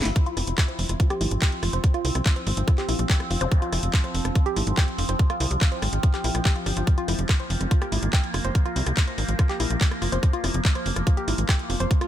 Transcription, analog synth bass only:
0.05 0.12 G1 medium
0.37 0.43 F1 medium
0.47 0.54 F1 medium
0.79 0.85 F1 medium
0.89 0.96 F1 medium
1.21 1.27 G#1 medium
1.31 1.38 G#1 medium
1.63 1.69 F1 medium
1.73 1.80 F1 medium
2.05 2.11 C2 medium
2.15 2.21 C2 medium
2.47 2.53 G#1 medium
2.57 2.63 G#1 medium
2.89 2.95 A#1 medium
2.99 3.05 A#1 medium
3.31 3.37 F1 loud
3.41 3.47 F1 medium
3.73 3.79 F1 loud
3.83 3.89 F1 medium
4.14 4.21 F1 medium
4.25 4.31 F1 medium
4.56 4.63 G#1 medium
4.67 4.73 G#1 medium
4.98 5.05 F1 loud
5.09 5.15 F1 medium
5.40 5.47 C2 medium
5.51 5.57 C2 medium
5.82 5.89 G#1 loud
5.93 5.99 G#1 medium
6.24 6.31 A#1 medium
6.35 6.41 A#1 medium
6.66 6.73 G1 medium
6.77 6.83 G1 medium
7.08 7.14 F1 medium
7.19 7.25 F1 medium
7.50 7.56 F1 loud
7.61 7.67 F1 medium
7.92 7.98 G#1 medium
8.03 8.09 G#1 medium
8.34 8.40 F1 medium
8.45 8.51 F1 medium
8.76 8.82 C2 loud
8.87 8.93 C2 medium
9.18 9.24 G#1 medium
9.28 9.35 G#1 medium
9.60 9.66 A#1 medium
9.70 9.77 A#1 medium
10.02 10.08 F1 medium
10.12 10.19 F1 medium
10.44 10.50 F1 medium
10.54 10.61 F1 medium
10.86 10.92 F1 medium
10.96 11.03 F1 medium
11.28 11.34 G#1 medium
11.38 11.45 G#1 medium
11.70 11.76 F1 medium
11.80 11.87 F1 medium

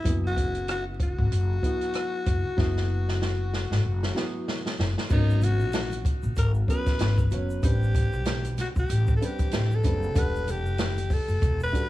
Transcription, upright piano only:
0.04 1.16 F#3 medium
0.04 1.17 B3 medium
0.04 1.17 E4 medium
0.04 1.18 G#4 medium
1.62 2.47 F#3 medium
1.62 2.47 B3 medium
1.62 2.48 E4 medium
1.62 2.48 G#4 medium
2.56 3.69 F#3 medium
2.56 3.69 B3 medium
2.56 3.70 E4 medium
2.56 3.70 G#4 medium
4.14 4.99 F#3 medium
4.14 4.99 B3 medium
4.14 5.00 E4 medium
4.14 5.00 G#4 medium
5.09 6.22 F#3 medium
5.09 6.22 B3 medium
5.09 6.22 C#4 medium
5.09 6.23 A#4 medium
6.67 7.24 F#3 medium
6.67 7.24 B3 medium
6.67 7.25 C#4 medium
6.67 7.25 G#4 medium
7.31 7.59 F#3 medium
7.31 7.60 B3 medium
7.31 7.60 C#4 medium
7.31 7.60 C#5 medium
7.62 8.74 G3 medium
7.62 8.75 C4 medium
7.62 8.75 D4 medium
7.62 8.76 B4 medium
9.20 9.76 G3 medium
9.20 9.77 C4 medium
9.20 9.77 D4 medium
9.20 9.78 B4 medium
9.83 10.11 G3 medium
9.83 10.12 C4 medium
9.83 10.12 D4 medium
9.83 10.13 B4 medium
10.13 11.26 G3 medium
10.13 11.27 D4 medium
10.13 11.28 A4 medium
10.13 11.27 F#5 medium
11.72 11.89 G3 medium
11.72 11.89 D4 medium
11.72 11.89 F#4 medium
11.72 11.81 A4 medium
11.81 11.89 B4 medium

